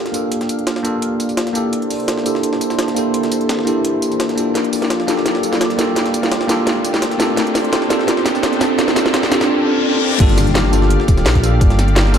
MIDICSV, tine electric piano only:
0, 0, Header, 1, 2, 480
1, 0, Start_track
1, 0, Tempo, 352941
1, 430, Time_signature, 4, 2, 24, 8
1, 16568, End_track
2, 0, Start_track
2, 0, Title_t, "Tine electric piano"
2, 0, Program_c, 0, 4
2, 0, Control_c, 0, 64, 127
2, 0, Note_on_c, 0, 58, 81
2, 0, Note_on_c, 0, 62, 73
2, 0, Note_on_c, 0, 65, 73
2, 0, Note_on_c, 0, 67, 72
2, 0, Note_on_c, 0, 69, 89
2, 146, Note_off_c, 0, 58, 0
2, 157, Note_off_c, 0, 62, 0
2, 162, Note_on_c, 0, 58, 78
2, 163, Note_off_c, 0, 65, 0
2, 170, Note_off_c, 0, 67, 0
2, 176, Note_off_c, 0, 69, 0
2, 176, Note_on_c, 0, 62, 72
2, 189, Note_on_c, 0, 65, 73
2, 202, Note_on_c, 0, 67, 71
2, 214, Note_on_c, 0, 69, 87
2, 1109, Note_off_c, 0, 58, 0
2, 1115, Note_off_c, 0, 62, 0
2, 1122, Note_off_c, 0, 65, 0
2, 1124, Note_on_c, 0, 58, 86
2, 1129, Note_off_c, 0, 67, 0
2, 1135, Note_off_c, 0, 69, 0
2, 1138, Note_on_c, 0, 62, 82
2, 1149, Note_on_c, 0, 65, 80
2, 1163, Note_on_c, 0, 67, 81
2, 1177, Note_on_c, 0, 69, 94
2, 2066, Note_off_c, 0, 58, 0
2, 2076, Note_off_c, 0, 62, 0
2, 2082, Note_off_c, 0, 65, 0
2, 2082, Note_on_c, 0, 58, 86
2, 2089, Note_off_c, 0, 67, 0
2, 2096, Note_off_c, 0, 69, 0
2, 2096, Note_on_c, 0, 62, 80
2, 2108, Note_on_c, 0, 64, 79
2, 2121, Note_on_c, 0, 67, 79
2, 2134, Note_on_c, 0, 69, 93
2, 2365, Control_c, 0, 64, 0
2, 2610, Control_c, 0, 64, 127
2, 3029, Note_off_c, 0, 58, 0
2, 3036, Note_off_c, 0, 62, 0
2, 3042, Note_off_c, 0, 64, 0
2, 3044, Note_on_c, 0, 58, 82
2, 3048, Note_off_c, 0, 67, 0
2, 3055, Note_off_c, 0, 69, 0
2, 3056, Note_on_c, 0, 62, 75
2, 3069, Note_on_c, 0, 64, 73
2, 3082, Note_on_c, 0, 67, 75
2, 3095, Note_on_c, 0, 69, 89
2, 3986, Note_off_c, 0, 58, 0
2, 3995, Note_off_c, 0, 62, 0
2, 4002, Note_off_c, 0, 64, 0
2, 4002, Note_on_c, 0, 58, 81
2, 4008, Note_off_c, 0, 67, 0
2, 4015, Note_off_c, 0, 69, 0
2, 4016, Note_on_c, 0, 62, 74
2, 4028, Note_on_c, 0, 64, 72
2, 4042, Note_on_c, 0, 67, 74
2, 4055, Note_on_c, 0, 69, 89
2, 4949, Note_off_c, 0, 58, 0
2, 4956, Note_off_c, 0, 62, 0
2, 4962, Note_off_c, 0, 64, 0
2, 4965, Note_on_c, 0, 58, 87
2, 4969, Note_off_c, 0, 67, 0
2, 4975, Note_off_c, 0, 69, 0
2, 4978, Note_on_c, 0, 62, 81
2, 4990, Note_on_c, 0, 64, 78
2, 5003, Note_on_c, 0, 67, 82
2, 5015, Note_on_c, 0, 69, 94
2, 5910, Note_off_c, 0, 58, 0
2, 5917, Note_off_c, 0, 62, 0
2, 5923, Note_off_c, 0, 64, 0
2, 5926, Note_on_c, 0, 58, 79
2, 5929, Note_off_c, 0, 67, 0
2, 5935, Note_off_c, 0, 69, 0
2, 5939, Note_on_c, 0, 62, 70
2, 5952, Note_on_c, 0, 65, 72
2, 5965, Note_on_c, 0, 67, 71
2, 5979, Note_on_c, 0, 69, 87
2, 6208, Control_c, 0, 64, 0
2, 6417, Control_c, 0, 64, 127
2, 6870, Note_off_c, 0, 58, 0
2, 6877, Note_off_c, 0, 62, 0
2, 6884, Note_off_c, 0, 65, 0
2, 6886, Note_on_c, 0, 58, 81
2, 6890, Note_off_c, 0, 67, 0
2, 6897, Note_off_c, 0, 69, 0
2, 6898, Note_on_c, 0, 62, 76
2, 6912, Note_on_c, 0, 65, 75
2, 6926, Note_on_c, 0, 67, 75
2, 6937, Note_on_c, 0, 69, 91
2, 7826, Note_off_c, 0, 58, 0
2, 7836, Note_off_c, 0, 62, 0
2, 7842, Note_on_c, 0, 58, 81
2, 7843, Note_off_c, 0, 65, 0
2, 7850, Note_off_c, 0, 67, 0
2, 7856, Note_off_c, 0, 69, 0
2, 7856, Note_on_c, 0, 62, 73
2, 7870, Note_on_c, 0, 65, 75
2, 7882, Note_on_c, 0, 67, 75
2, 7894, Note_on_c, 0, 69, 90
2, 8789, Note_off_c, 0, 58, 0
2, 8795, Note_off_c, 0, 62, 0
2, 8803, Note_off_c, 0, 65, 0
2, 8803, Note_on_c, 0, 58, 91
2, 8809, Note_off_c, 0, 67, 0
2, 8815, Note_off_c, 0, 69, 0
2, 8815, Note_on_c, 0, 62, 80
2, 8829, Note_on_c, 0, 65, 82
2, 8842, Note_on_c, 0, 67, 80
2, 8855, Note_on_c, 0, 69, 100
2, 9749, Note_off_c, 0, 58, 0
2, 9755, Note_off_c, 0, 62, 0
2, 9762, Note_off_c, 0, 65, 0
2, 9763, Note_on_c, 0, 60, 88
2, 9768, Note_off_c, 0, 67, 0
2, 9775, Note_off_c, 0, 69, 0
2, 9776, Note_on_c, 0, 62, 82
2, 9789, Note_on_c, 0, 65, 82
2, 9802, Note_on_c, 0, 67, 82
2, 9815, Note_on_c, 0, 69, 98
2, 10048, Control_c, 0, 64, 0
2, 10290, Control_c, 0, 64, 127
2, 10709, Note_off_c, 0, 60, 0
2, 10716, Note_off_c, 0, 62, 0
2, 10722, Note_off_c, 0, 65, 0
2, 10724, Note_on_c, 0, 60, 86
2, 10729, Note_off_c, 0, 67, 0
2, 10735, Note_off_c, 0, 69, 0
2, 10739, Note_on_c, 0, 62, 77
2, 10751, Note_on_c, 0, 65, 78
2, 10764, Note_on_c, 0, 67, 77
2, 10776, Note_on_c, 0, 69, 91
2, 11666, Note_off_c, 0, 60, 0
2, 11677, Note_off_c, 0, 62, 0
2, 11682, Note_on_c, 0, 60, 82
2, 11683, Note_off_c, 0, 65, 0
2, 11690, Note_off_c, 0, 67, 0
2, 11695, Note_off_c, 0, 69, 0
2, 11696, Note_on_c, 0, 62, 76
2, 11709, Note_on_c, 0, 65, 76
2, 11722, Note_on_c, 0, 67, 76
2, 11735, Note_on_c, 0, 69, 90
2, 12629, Note_off_c, 0, 60, 0
2, 12636, Note_off_c, 0, 62, 0
2, 12642, Note_off_c, 0, 65, 0
2, 12645, Note_on_c, 0, 60, 92
2, 12648, Note_off_c, 0, 67, 0
2, 12655, Note_off_c, 0, 69, 0
2, 12658, Note_on_c, 0, 62, 83
2, 12671, Note_on_c, 0, 65, 85
2, 12684, Note_on_c, 0, 67, 81
2, 12697, Note_on_c, 0, 69, 104
2, 12897, Note_off_c, 0, 60, 0
2, 12904, Note_off_c, 0, 62, 0
2, 12910, Note_off_c, 0, 65, 0
2, 12917, Note_off_c, 0, 67, 0
2, 12923, Note_off_c, 0, 69, 0
2, 13846, Note_on_c, 0, 58, 99
2, 13859, Note_on_c, 0, 62, 91
2, 13872, Note_on_c, 0, 65, 92
2, 13886, Note_on_c, 0, 67, 91
2, 13888, Control_c, 0, 64, 0
2, 13897, Note_on_c, 0, 69, 112
2, 14154, Control_c, 0, 64, 127
2, 14532, Note_off_c, 0, 58, 0
2, 14539, Note_off_c, 0, 62, 0
2, 14546, Note_off_c, 0, 65, 0
2, 14552, Note_off_c, 0, 67, 0
2, 14558, Note_off_c, 0, 69, 0
2, 14563, Note_on_c, 0, 58, 86
2, 14576, Note_on_c, 0, 62, 75
2, 14589, Note_on_c, 0, 65, 77
2, 14602, Note_on_c, 0, 67, 75
2, 14615, Note_on_c, 0, 69, 90
2, 15509, Note_off_c, 0, 58, 0
2, 15515, Note_off_c, 0, 62, 0
2, 15522, Note_off_c, 0, 65, 0
2, 15524, Note_on_c, 0, 58, 80
2, 15529, Note_off_c, 0, 67, 0
2, 15535, Note_off_c, 0, 69, 0
2, 15538, Note_on_c, 0, 62, 76
2, 15550, Note_on_c, 0, 65, 76
2, 15563, Note_on_c, 0, 67, 76
2, 15576, Note_on_c, 0, 69, 90
2, 16470, Note_off_c, 0, 58, 0
2, 16477, Note_off_c, 0, 62, 0
2, 16483, Note_off_c, 0, 65, 0
2, 16484, Note_on_c, 0, 58, 91
2, 16489, Note_off_c, 0, 67, 0
2, 16496, Note_off_c, 0, 69, 0
2, 16497, Note_on_c, 0, 62, 84
2, 16510, Note_on_c, 0, 65, 83
2, 16523, Note_on_c, 0, 67, 83
2, 16568, Note_off_c, 0, 58, 0
2, 16568, Note_off_c, 0, 62, 0
2, 16568, Note_off_c, 0, 65, 0
2, 16568, Note_off_c, 0, 67, 0
2, 16568, End_track
0, 0, End_of_file